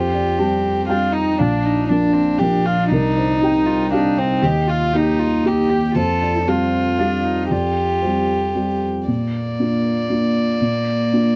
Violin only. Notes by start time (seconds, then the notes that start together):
Already playing: G4
0.88 F4
1.13 D#4
1.39 D4
1.89 D4
2.39 G4
2.65 F4
2.92 D#4
3.93 D4
4.18 C4
4.44 G4
4.70 F4
4.96 D#4
5.47 G4
5.98 A4
6.48 F4
7.52 G4
9.08 D5